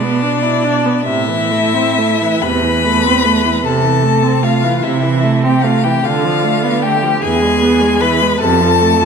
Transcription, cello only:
0.00 0.84 B2 medium
1.05 2.20 A2 medium
2.42 3.44 E2 medium
3.63 4.63 C3 medium
4.83 5.84 C3 medium
6.05 7.03 D3 medium
7.23 8.21 E2 medium
8.42 9.05 F2 medium

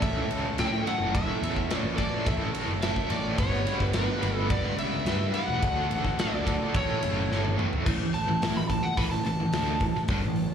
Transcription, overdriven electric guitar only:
0.02 0.29 A2 loud
0.02 0.29 A3 loud
0.02 0.30 C#4 loud
0.02 0.30 E4 loud
0.02 0.30 A4 loud
0.30 0.57 A2 medium
0.30 0.57 A3 medium
0.30 0.58 C#4 medium
0.30 0.59 E4 medium
0.30 0.58 A4 medium
0.58 0.85 A2 medium
0.58 0.85 A3 medium
0.58 0.86 C#4 medium
0.58 0.86 E4 loud
0.58 0.86 A4 loud
0.86 1.13 A2 medium
0.86 1.14 A3 loud
0.86 1.14 C#4 medium
0.86 1.14 E4 medium
0.86 1.14 A4 medium
1.14 1.41 A2 medium
1.14 1.42 A3 loud
1.14 1.42 C#4 loud
1.14 1.43 E4 loud
1.14 1.43 A4 loud
1.43 1.69 A2 medium
1.43 1.69 A3 medium
1.43 1.69 C#4 medium
1.43 1.70 E4 medium
1.43 1.70 A4 medium
1.70 1.96 A2 medium
1.70 1.96 A3 loud
1.70 1.96 C#4 loud
1.70 1.97 E4 medium
1.70 1.97 A4 loud
1.97 2.24 A2 medium
1.97 2.25 A3 medium
1.97 2.25 C#4 medium
1.97 2.26 E4 medium
1.97 2.26 A4 medium
2.26 2.52 A2 medium
2.26 2.53 A3 loud
2.26 2.53 C#4 loud
2.26 2.53 E4 loud
2.26 2.54 A4 loud
2.54 2.80 A2 medium
2.54 2.80 A3 medium
2.54 2.81 C#4 medium
2.54 2.81 E4 medium
2.54 2.81 A4 medium
2.81 3.08 A2 loud
2.81 3.09 A3 medium
2.81 3.09 C#4 medium
2.81 3.09 E4 loud
2.81 3.09 A4 loud
3.09 3.36 A2 medium
3.09 3.37 A3 medium
3.09 3.37 C#4 loud
3.09 3.37 E4 medium
3.09 3.37 A4 loud
3.37 3.64 G3 loud
3.37 3.65 B3 loud
3.37 3.65 D4 loud
3.37 3.65 B4 loud
3.66 3.93 G3 medium
3.66 3.94 B3 medium
3.66 3.93 D4 medium
3.66 3.94 B4 medium
3.94 4.21 G3 medium
3.94 4.22 B3 loud
3.94 4.22 D4 loud
3.94 4.22 B4 loud
4.22 4.49 G3 medium
4.22 4.50 B3 loud
4.22 4.50 D4 medium
4.22 4.50 B4 medium
4.50 4.77 G3 loud
4.50 4.77 B3 loud
4.50 4.77 D4 loud
4.50 4.78 B4 loud
4.78 5.05 G3 medium
4.78 5.06 B3 medium
4.78 5.05 D4 medium
4.78 5.06 B4 loud
5.06 5.32 G3 loud
5.06 5.34 B3 loud
5.06 5.33 D4 loud
5.06 5.34 B4 loud
5.34 5.61 G3 medium
5.34 5.61 B3 loud
5.34 5.61 D4 loud
5.34 5.61 B4 loud
5.62 5.89 D3 medium
5.62 5.89 D4 medium
5.62 5.89 F#4 loud
5.62 5.90 A4 loud
5.90 6.17 D3 medium
5.90 6.17 D4 loud
5.90 6.17 F#4 medium
5.90 6.18 A4 loud
6.18 6.45 D3 medium
6.18 6.45 D4 medium
6.18 6.45 F#4 loud
6.18 6.46 A4 loud
6.46 6.73 D3 medium
6.46 6.73 D4 medium
6.46 6.73 F#4 medium
6.46 6.73 A4 medium
6.74 7.01 A2 medium
6.74 7.02 A3 loud
6.74 7.02 C#4 loud
6.74 7.02 E4 loud
6.74 7.03 A4 loud
7.02 7.29 A2 medium
7.02 7.29 A3 medium
7.02 7.29 C#4 medium
7.02 7.29 E4 medium
7.02 7.30 A4 medium
7.30 7.56 A2 loud
7.30 7.57 A3 loud
7.30 7.57 C#4 loud
7.30 7.57 E4 loud
7.30 7.58 A4 loud
7.57 7.84 A2 medium
7.57 7.84 A3 medium
7.57 7.85 C#4 medium
7.57 7.85 E4 medium
7.57 7.85 A4 medium
7.86 7.99 A2 loud
7.86 7.99 E3 loud
8.00 8.22 A2 medium
8.00 8.23 E3 medium
8.28 8.42 A2 medium
8.28 8.42 E3 medium
8.42 8.55 A3 medium
8.42 8.55 E4 loud
8.56 8.69 A2 medium
8.56 8.69 E3 medium
8.70 8.83 A2 medium
8.70 8.84 E3 medium
8.84 muted overdriven electric guitar stroke medium
8.98 9.11 A2 medium
8.98 9.11 E3 loud
9.12 9.25 A2 medium
9.12 9.25 E3 medium
9.27 9.39 A2 medium
9.27 9.39 E3 medium
9.40 9.53 A2 medium
9.40 9.54 E3 medium
9.54 9.81 D3 medium
9.54 9.81 A3 loud
9.54 9.81 D4 loud
9.82 9.95 A2 medium
9.82 9.96 E3 medium
9.96 muted overdriven electric guitar stroke medium
10.10 10.23 G2 loud
10.10 10.23 D3 loud
10.24 10.46 A2 medium
10.24 10.46 E3 medium

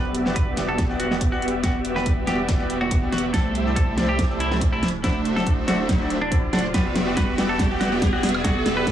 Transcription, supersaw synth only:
0.00 1.08 B3 medium
0.00 1.08 F#4 medium
0.00 1.08 G4 medium
0.00 1.08 D5 medium
0.00 1.08 E5 medium
1.11 1.61 B3 medium
1.11 1.61 F#4 medium
1.11 1.61 G4 medium
1.11 1.61 D5 medium
1.11 1.61 E5 medium
1.64 2.79 B3 medium
1.64 2.79 F#4 medium
1.64 2.79 G4 medium
1.64 2.79 D5 medium
1.64 2.79 E5 medium
2.81 3.31 B3 medium
2.81 3.31 F#4 medium
2.81 3.31 G4 medium
2.81 3.31 D5 medium
2.81 3.31 E5 medium
3.34 4.49 A3 medium
3.34 4.49 E4 medium
3.34 4.49 G4 medium
3.34 4.49 C5 medium
3.34 4.49 E5 medium
4.51 4.82 A3 medium
4.51 4.82 E4 medium
4.51 4.82 G4 medium
4.51 4.82 C5 medium
4.51 4.82 E5 medium
5.04 6.19 A3 medium
5.04 6.19 D4 medium
5.04 6.19 F#4 medium
5.04 6.19 C5 medium
5.04 6.19 E5 medium
6.53 6.67 A3 medium
6.53 6.67 D4 medium
6.53 6.67 F#4 medium
6.53 6.67 C5 medium
6.53 6.67 F#5 loud
6.74 7.89 B3 medium
6.74 7.89 F#4 medium
6.74 7.89 G4 medium
6.74 7.89 D5 medium
6.74 7.89 E5 medium
7.92 8.42 B3 medium
7.92 8.42 F#4 medium
7.92 8.42 G4 medium
7.92 8.42 D5 medium
7.92 8.42 E5 medium
8.44 8.92 B3 medium
8.44 8.92 F#4 medium
8.44 8.92 G4 medium
8.44 8.92 D5 medium
8.44 8.92 E5 medium

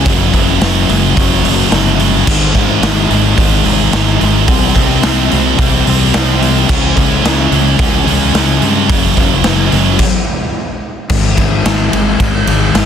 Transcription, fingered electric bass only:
0.06 0.32 F#1 medium
0.34 0.60 F#1 loud
0.61 0.87 F#1 medium
0.89 1.15 F#1 medium
1.17 1.43 F#1 medium
1.45 1.71 F#1 loud
1.72 2.24 G1 medium
2.27 2.53 G#1 medium
2.55 2.81 G#1 medium
2.83 3.09 G#1 medium
3.10 3.36 G#1 medium
3.38 3.64 G#1 medium
3.65 3.91 G#1 medium
3.93 4.19 G#1 medium
4.21 4.47 G#1 medium
4.48 4.74 C2 medium
4.76 5.02 C2 medium
5.04 5.30 C2 medium
5.33 5.58 C2 medium
5.59 5.85 C2 medium
5.87 6.13 C2 loud
6.15 6.66 C2 medium
6.69 6.95 C#2 medium
6.97 7.23 C#2 medium
7.24 7.50 C#2 medium
7.51 7.77 C#2 medium
8.06 8.33 C#2 loud
8.34 8.60 C#2 medium
8.62 8.88 G2 loud
8.90 9.16 F#1 medium
9.17 9.43 F#1 medium
9.45 9.71 F#1 medium
9.73 9.98 F#1 loud
11.10 11.36 G#1 medium
11.37 11.63 G#1 medium
11.66 11.91 G#1 loud
11.93 12.19 G#1 medium
12.20 12.46 G#1 medium
12.47 12.73 G#1 loud
12.74 12.86 G#1 medium

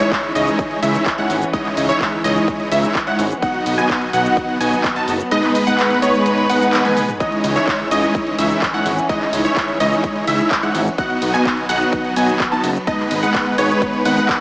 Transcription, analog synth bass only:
0.35 0.50 C#2 loud
0.83 0.97 C#2 loud
1.30 1.44 G#1 loud
1.77 1.92 C#2 loud
2.24 2.39 C#2 loud
2.72 2.86 C#2 loud
3.19 3.33 G#1 loud
3.66 3.81 B1 loud
4.13 4.28 B1 loud
4.61 4.75 B1 loud
5.08 5.22 F#1 loud
7.44 7.59 C#2 loud
7.91 8.06 C#2 loud
8.38 8.53 C#2 loud
8.86 9.00 G#1 loud
9.33 9.48 C#2 loud
9.80 9.95 C#2 loud
10.28 10.42 C#2 loud
10.75 10.89 G#1 loud
11.22 11.37 B1 medium
11.69 11.84 B1 loud
12.16 12.31 B1 loud
12.64 12.78 F#1 loud
13.11 13.25 G#1 loud
13.58 13.73 G#1 loud
14.05 14.20 G#1 loud

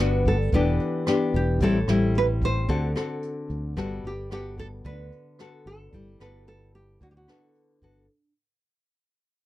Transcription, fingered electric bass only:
0.00 0.49 G1 medium
0.52 0.78 E1 medium
1.34 1.59 E1 medium
1.60 1.86 A1 medium
1.88 2.65 A1 medium
2.69 2.94 D2 medium
3.50 3.75 D2 medium
3.77 4.02 G1 medium
4.04 4.81 G1 medium
4.85 5.10 D2 medium
5.66 5.91 G1 medium
5.93 6.18 G1 medium
6.20 6.97 G1 medium
7.01 7.26 D2 medium
7.82 8.07 G1 medium

